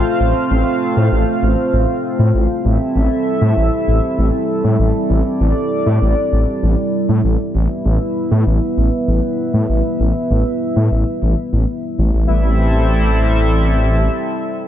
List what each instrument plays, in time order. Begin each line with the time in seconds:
Already playing: analog synth pad A3 C4 F4 C5 F5
0.20 detuned saw bass A1
0.50 detuned saw bass A1
0.96 detuned saw bass A2
1.12 detuned saw bass A1
1.42 detuned saw bass A1
1.73 detuned saw bass A1
2.19 detuned saw bass A2
2.34 detuned saw bass A1
2.49 analog synth pad G3 E4 A4 E5
2.65 detuned saw bass A1
2.95 detuned saw bass A1
3.41 detuned saw bass A2
3.57 detuned saw bass A1
3.87 detuned saw bass A1
4.18 detuned saw bass A1
4.64 detuned saw bass A2
4.79 detuned saw bass A1
4.94 analog synth pad D5
5.10 detuned saw bass A1
5.40 detuned saw bass A1
5.86 detuned saw bass A2
6.01 detuned saw bass A1
6.32 detuned saw bass A1
6.63 detuned saw bass A1
7.09 detuned saw bass A2
7.24 detuned saw bass A1
7.39 analog synth pad B3 E4 B4 E5
7.55 detuned saw bass A1
7.85 detuned saw bass A1
8.31 detuned saw bass A2
8.46 detuned saw bass A1
8.77 detuned saw bass A1
9.08 detuned saw bass A1
9.54 detuned saw bass A2
9.69 detuned saw bass A1
9.99 detuned saw bass A1
10.30 detuned saw bass A1
10.76 detuned saw bass A2
10.91 detuned saw bass A1
11.22 detuned saw bass A1
11.52 detuned saw bass A1
11.98 detuned saw bass A1
12.14 detuned saw bass A1
12.29 detuned saw bass A1, analog synth pad G3 C4 E4 A4 E5